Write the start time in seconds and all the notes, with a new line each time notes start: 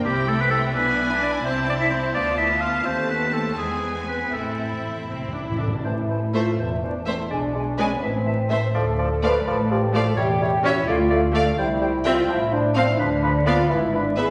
0.04 C2 G3 C4 E4 G4 G5
0.28 A3 A4
0.39 B3 B4
0.51 A3 A4
0.74 B1 B3 D4 E4 B4 G#5
1.21 D4 D5
1.44 C2 C4 C5 A5
1.68 D4 D5
1.80 E4 E5
1.90 C4 C5
2.14 D2 B3 D4 F4 D5 A5
2.37 E4 E5
2.61 F4 F5
2.84 D#2 A3 C4 C5
3.10 B3 B4
3.33 A3 A4
3.57 E2 G#3 B3 G#4 G#5
4.08 B3 B4
4.33 A1 A2 A3 C4 E4 A4 E5
4.41 A2
4.49 A2
4.56 A2
4.64 A2
4.73 A2
4.80 A2
4.88 A2
4.96 A2
5.04 A2
5.09 C2 A2 C4
5.20 A2
5.28 A2
5.35 A2 D4
5.44 A2
5.49 A2 E4
5.60 A2 D4 A4
5.68 A2
5.75 A2
5.84 A1 A2 E3 E4 C5 A5
6.09 E3 C5 A5
6.34 E3 A3 F4 C5 E5 A5
6.58 E1 E2 E3 E4 C5 A5
6.83 E3 D4 C5 A5
7.06 E3 A3 C4 C5 E5 A5
7.19 E4
7.30 B1 B2 G#3 D4 D5 G#5
7.54 G#3 D4 D5 G#5
7.78 G#3 C#4 B4 D5 G#5
7.92 B3
8.02 A1 A2 E3 C4 E5 A5
8.26 E3 E5 A5
8.49 E3 A3 C5 E5 A5
8.74 D2 F3 A4 D5 A5
8.99 F3 D5 A5
9.23 F3 A3 B4 D5 F5 A5
9.46 A1 A2 F3 A4 D5 A5
9.71 F3 G4 D5 A5
9.93 F3 A3 F4 D5 F5 A5
10.07 A4
10.16 E1 E2 G3 G4 C#5 E5
10.41 G3 G4 C#5 E5
10.63 G3 C#4 F#4 C#5 E5
10.77 E4
10.87 D2 A3 F4 D5 F5
11.10 A3 D5 F5
11.34 A3 D5 F5
11.57 C2 G3 E4 C5 G5
11.81 G3 C5 G5
12.05 G3 C4 F4 C5 E5 G5
12.28 A1 A2 F3 E4 C5 A5
12.51 F3 D4 C5 A5
12.75 F3 C4 C5 F5 A5
12.89 E4
12.98 D2 D3 F3 D4 B4 B5
13.22 F3 B4 B5
13.46 F3 B3 F4 B4 D5 F5 B5
13.69 G#1 G#2 E3 E4 B4 B5
13.93 E3 D4 B4 B5
14.17 E3 B3 G#4 B4 E5 B5